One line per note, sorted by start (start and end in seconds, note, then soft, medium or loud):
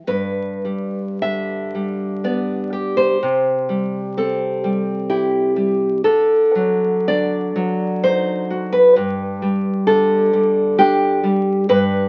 0.07 3.16 G2 medium
0.07 1.18 B4 medium
0.65 1.73 G3 soft
1.22 2.72 D3 soft
1.22 2.19 E5 medium
1.75 3.21 G3 soft
2.24 3.21 B3 medium
2.24 2.94 D5 medium
2.73 3.21 G4 medium
2.97 4.13 C5 medium
3.22 6.01 C3 medium
3.69 4.63 G3 medium
4.17 5.57 C4 medium
4.17 5.07 A4 medium
4.64 5.55 G3 medium
5.10 6.04 E4 medium
5.10 6.00 G4 medium
5.56 6.04 G3 medium
6.04 8.93 D3 medium
6.04 7.03 A4 loud
6.55 7.54 F#3 medium
7.08 8.50 D4 medium
7.08 8.00 D5 loud
7.56 8.97 F#3 medium
8.03 8.97 D#4 medium
8.03 8.71 C5 loud
8.50 8.97 F#4 medium
8.72 9.83 B4 loud
8.96 11.65 G2 medium
9.42 10.32 G3 medium
9.87 11.24 D3 medium
9.87 10.75 A4 loud
10.33 11.22 G3 medium
10.78 11.70 D4 medium
10.78 11.66 G4 loud
11.24 11.69 G3 medium
11.69 12.09 G2 medium
11.69 12.09 B4 loud